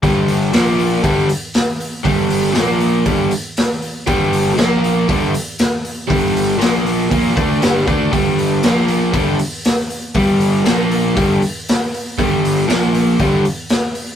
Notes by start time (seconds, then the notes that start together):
0.03 G1 G2 D3 G3, kick, open hi-hat
0.28 open hi-hat
0.53 A#1 A#2 F3 A#3, snare, open hi-hat
0.79 open hi-hat
1.02 G1 G2 D3 G3, kick, open hi-hat
1.29 open hi-hat
1.54 snare, open hi-hat
1.80 open hi-hat
2.04 G1 G2 D3 G3, kick, open hi-hat
2.30 open hi-hat
2.54 A#1 A#2 F3 A#3, snare, open hi-hat
2.80 open hi-hat
3.05 G1 G2 D3 G3, kick, open hi-hat
3.31 open hi-hat
3.57 snare, open hi-hat
3.82 open hi-hat
4.07 G1 G2 D3 G3, kick, open hi-hat
4.33 open hi-hat
4.57 A#1 A#2 F3 A#3, snare, open hi-hat
4.84 open hi-hat
5.09 G1 G2 D3 G3, kick, open hi-hat
5.34 open hi-hat
5.59 snare, open hi-hat
5.85 open hi-hat
6.08 G1 G2 D3 G3, kick, open hi-hat
6.36 open hi-hat
6.57 A#1 A#2 F3 A#3
6.61 snare, open hi-hat
6.86 open hi-hat
7.10 A#1 A#2 F3 A#3, kick, open hi-hat
7.35 D2 D3 A3 D4, kick, open hi-hat
7.61 G1 G2 D3 G3, snare, open hi-hat
7.87 D2 D3 A3 D4, kick, open hi-hat
8.12 G1 G2 D3 G3, kick, open hi-hat
8.39 open hi-hat
8.63 A#1 A#2 F3 A#3, snare, open hi-hat
8.88 open hi-hat
9.12 G1 G2 D3 G3, kick, open hi-hat
9.39 open hi-hat
9.65 snare, open hi-hat
9.90 open hi-hat
10.14 G1 G2 D3 G3, kick, open hi-hat
10.40 open hi-hat
10.65 A#1 A#2 F3 A#3, snare, open hi-hat
10.91 open hi-hat
11.15 G1 G2 D3 G3, kick, open hi-hat
11.42 open hi-hat
11.68 snare, open hi-hat
11.94 open hi-hat
12.18 G1 G2 D3 G3, kick, open hi-hat
12.45 open hi-hat
12.68 A#1 A#2 F3 A#3, snare, open hi-hat
12.95 open hi-hat
13.19 G1 G2 D3 G3, kick, open hi-hat
13.45 open hi-hat
13.69 snare, open hi-hat
13.95 open hi-hat